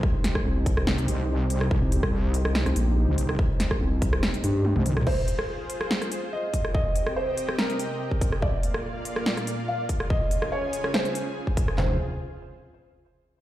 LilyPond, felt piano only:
\new Staff \with { instrumentName = "Felt piano" } { \time 4/4 \key f \minor \tempo 4 = 143 r1 | r1 | r1 | c''4. r4. ees''4 |
ees''4 c''4 bes'2 | d''4. r4. f''4 | ees''4 des''4 c''2 | c''8 r2. r8 | }